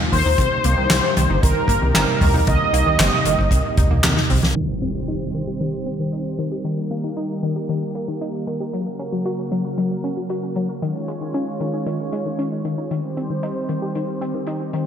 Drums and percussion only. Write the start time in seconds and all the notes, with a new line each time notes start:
0.12 kick, open hi-hat
0.38 kick, closed hi-hat
0.64 closed hi-hat
0.90 snare, clap, closed hi-hat
1.17 closed hi-hat
1.43 kick, closed hi-hat
1.68 kick, closed hi-hat
1.94 snare, clap, closed hi-hat
2.21 mid tom, open hi-hat
2.47 kick, closed hi-hat
2.74 closed hi-hat
2.99 snare, clap, closed hi-hat
3.25 closed hi-hat
3.39 kick
3.51 kick, closed hi-hat
3.77 kick, closed hi-hat, mid tom
4.03 snare, clap, closed hi-hat, mid tom, high tom
4.17 snare
4.30 kick, open hi-hat
4.43 snare
4.56 closed hi-hat
4.82 closed hi-hat
5.08 closed hi-hat
5.34 closed hi-hat
5.60 closed hi-hat
5.86 closed hi-hat
6.13 closed hi-hat
6.38 closed hi-hat
6.65 closed hi-hat
6.91 closed hi-hat
7.16 closed hi-hat
7.43 closed hi-hat
7.69 closed hi-hat
7.95 closed hi-hat
8.21 closed hi-hat
8.47 closed hi-hat
8.74 closed hi-hat
9.00 closed hi-hat
9.25 closed hi-hat
9.52 closed hi-hat
9.78 closed hi-hat
10.05 closed hi-hat
10.30 closed hi-hat
10.56 closed hi-hat
10.83 closed hi-hat
11.08 closed hi-hat
11.34 closed hi-hat
11.60 closed hi-hat
11.87 closed hi-hat
12.12 closed hi-hat
12.39 closed hi-hat
12.65 closed hi-hat
12.91 closed hi-hat
13.17 closed hi-hat
13.43 closed hi-hat
13.69 closed hi-hat
13.95 closed hi-hat
14.22 closed hi-hat
14.47 closed hi-hat
14.73 closed hi-hat